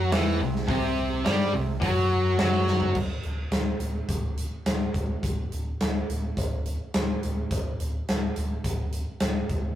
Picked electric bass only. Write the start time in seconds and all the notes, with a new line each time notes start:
0.12 E2
0.40 C2
0.69 C2
1.26 G2
1.55 C2
1.82 F#2
2.40 F#2
2.95 D1
3.25 D1
3.51 D1
3.80 D1
4.09 D1
4.66 D1
4.94 D1
5.24 D1
5.52 D1
5.81 D1
6.10 D1
6.38 D1
6.95 D1
7.25 D1
7.51 D1
7.81 D1
8.09 D1
8.37 D1
8.65 D1
9.22 D1
9.50 D1